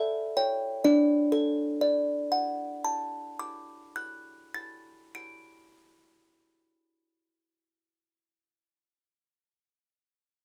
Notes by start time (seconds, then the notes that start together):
Already playing: A4 E5
0.37 C#5 G5
0.84 D4 D5
1.32 A4
1.81 D5
2.32 F#5
2.85 A5
3.39 D6
3.96 F#6
4.54 A6
5.15 D7